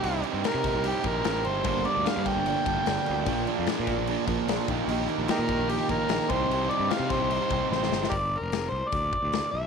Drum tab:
CC |x-x-x-x-x-x-x-x-|x-x-x-x-x-x-x-x-|x-x-x-x-x-x-x-x-|x-x-x-x-x-x-x-x-|
HH |----------------|----------------|----------------|----------------|
SD |----o-o-----o---|----o-------oo--|----o-o-----o---|----o-------oo--|
BD |------o---o-----|o-----o---o-----|o-----o---o---o-|------o---o---o-|

CC |x-x-x-x-x-x-----|----------------|
HH |----------------|o---o---o---o---|
SD |----o-o-----oooo|----o-------o---|
BD |------o---o-----|o-------o-o-----|